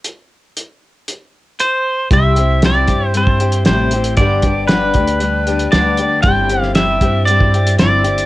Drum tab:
HH |x---x---x---x---|x-x-x-x-x-xxx-xx|x-x-x-xxx-xxx-x-|x-x-x-x-x-xxx-xx|
SD |----------------|----o-------o---|----o-------o---|---oo-------o---|
BD |----------------|o-----o--o------|o-o---o---------|o-----o--o------|